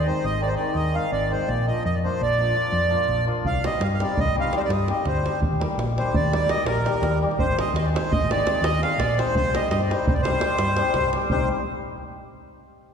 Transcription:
Already playing: D#2
0.06 D#3 G#3 C4 D#4 C5
0.24 G#1 D#5
0.40 D#3 G#3 C4 D#4 D5
0.48 C5
0.55 D#3 G#3 D5
0.60 C4 D#4
0.75 D#2 D#5
0.94 D#3 G#3 C4 D#4 F5
1.12 G#1 D5
1.30 D#3 G#3 C4 D#4 C5
1.47 A#1 D5
1.67 F3 A#3 D4 F4 D#5
1.85 F2 D#5
1.94 D5
2.04 F3 A#3 D4 F4 C5
2.21 A#1 D5
2.38 F3 A#3 D4 F4
2.55 F3 A#3 D4 F4
2.72 F2
2.90 F3 A#3 D4 F4
3.08 A#1
3.26 F3 A#3 D4 F4
3.45 C2 F5, davul low
3.64 G3 C4 D#4 G4 D#5, davul high
3.73 davul high
3.80 G2 F5, davul high
3.94 F5
4.00 G3 C4 D#4 G4 D5, davul high
4.09 davul high
4.17 C2 D#5, davul low
4.28 davul high
4.36 G3 C4 D#4 G4
4.40 F5
4.45 davul high
4.53 G3 C4 D#4 G4, davul high
4.57 C5 D5
4.65 D5
4.69 G2 D#5, davul high
4.79 davul high
4.88 G3 C4 D#4 G4 D#5, davul high
5.05 D2 C5, davul high, davul low
5.23 G3 C4 D#4 G4, davul high
5.35 davul high
5.42 D#2, davul low
5.59 G3 A#3 D#4 G4, davul high
5.71 davul high
5.78 A#1, davul high
5.97 G3 A#3 D#4 G4 C5, davul high
6.06 davul high
6.14 D#2 D5, davul low
6.24 davul high
6.32 G3 A#3 D#4 G4 D5, davul high
6.42 davul high
6.49 G3 A#3 D#4 G4 D#5, davul high
6.65 A#1 A#4, davul high
6.85 G3 A#3 D#4 G4, davul high
7.02 D#2, davul high, davul low
7.22 G3 A#3 D#4 G4
7.31 davul high
7.38 G#1 C5, davul low
7.58 G#3 C4 D#4 G#4 D#5, davul high
7.68 davul high
7.74 D#2 D#5, davul high
7.85 D5
7.93 G#3 C4 D#4 G#4 C5, davul high
8.04 davul high
8.11 G#1 D#5, davul low
8.21 davul high
8.29 G#3 C4 D#4 G#4 D5, davul high
8.39 davul high
8.45 G#3 C4 D#4 G#4, davul high
8.62 D#2 D#5, davul high
8.74 davul high
8.82 G#3 C4 D#4 G#4 F5, davul high
8.98 A#1 D5, davul high, davul low
9.18 G#3 C4 D#4 G#4 C5, davul high
9.27 davul high
9.35 C2 C5, davul low
9.45 davul high
9.54 G3 C4 D#4 G4 D#5, davul high
9.63 davul high
9.70 G2 D#5, davul high
9.80 D5, davul high
9.90 G3 C4 D#4 G4 C5, davul high
10.07 C2 C5, davul low
10.14 D5, davul high
10.22 G3 C5, davul high
10.26 C4 D#4 G4
10.33 davul high
10.41 G3 C4 D#4 G4, davul high
10.59 G2, davul high
10.68 davul high
10.77 G3 C4 D#4 G4, davul high
10.86 davul high
10.94 C2, davul high, davul low
11.04 davul high
11.13 G3 C4 D#4 G4, davul high
11.22 davul high
11.30 C2 G3 C4 D#4 G4 C5, davul low

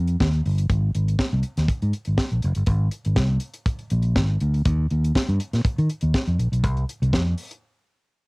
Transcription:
Already playing: F2
0.08 closed hi-hat
0.21 D#2, kick, snare
0.34 closed hi-hat
0.46 G1, open hi-hat
0.58 closed hi-hat
0.70 G#1, kick, closed hi-hat
0.95 G#1, closed hi-hat
1.08 closed hi-hat
1.19 kick, snare
1.33 C2
1.43 closed hi-hat
1.57 D#2, snare, closed hi-hat
1.68 muted fingered electric bass stroke, kick, closed hi-hat
1.82 G#2, closed hi-hat
1.93 closed hi-hat
2.05 G#1, closed hi-hat
2.17 kick, snare
2.30 A#1, closed hi-hat
2.42 F#1, closed hi-hat
2.55 G1, closed hi-hat
2.66 G#1, kick, closed hi-hat
2.91 closed hi-hat
3.05 G#1, closed hi-hat
3.16 C2, kick, snare
3.40 closed hi-hat
3.54 closed hi-hat
3.66 kick, closed hi-hat
3.79 closed hi-hat
3.90 A#1, closed hi-hat
4.02 closed hi-hat
4.16 G#1, kick, snare
4.40 D2, closed hi-hat
4.54 closed hi-hat
4.65 D#2, kick, closed hi-hat
4.90 D#2, closed hi-hat
5.04 closed hi-hat
5.15 kick, snare
5.29 G2, closed hi-hat
5.40 closed hi-hat
5.53 A#2, snare, closed hi-hat
5.65 muted fingered electric bass stroke, kick, closed hi-hat
5.78 D#3, closed hi-hat
5.89 closed hi-hat
6.01 D#2, closed hi-hat
6.14 kick, snare
6.27 F2, closed hi-hat
6.39 A#1, closed hi-hat
6.52 B1, closed hi-hat
6.64 C2, kick, closed hi-hat
6.77 closed hi-hat
6.89 closed hi-hat
7.02 C2, closed hi-hat
7.13 F2, kick, snare
7.38 open hi-hat
7.51 closed hi-hat

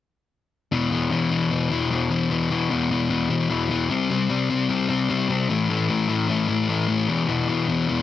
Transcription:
0.72 E2 B2 E3
0.91 E2 B2 E3
1.11 E2 B2 E3
1.31 E2 B2 E3
1.50 E2 B2 E3
1.70 E2 B2 E3
1.91 E2 B2 E3
2.10 E2 B2 E3
2.30 E2 B2 E3
2.50 E2 B2 E3
2.70 E2 B2 E3
2.91 E2 B2 E3
3.09 E2 B2 E3
3.29 E2 B2 E3
3.50 E2 B2 E3
3.69 E2 B2 E3
3.90 C3 G3 C4
4.10 C3 G3 C4
4.29 C3 G3 C4
4.50 C3 G3 C4
4.69 C3 G3 C4
4.89 C3 G3 C4
5.09 C3 G3 C4
5.29 C3 G3 C4
5.49 A2 E3 A3
5.70 A2 E3 A3
5.89 A2 E3 A3
6.08 A2 E3 A3
6.29 A2 E3 A3
6.48 A2 E3 A3
6.69 A2 E3 A3
6.88 A2 E3 A3
7.08 E2 B2 E3
7.28 E2 B2 E3
7.48 E2 B2 E3
7.68 E2 B2 E3
7.88 E2 B2 E3

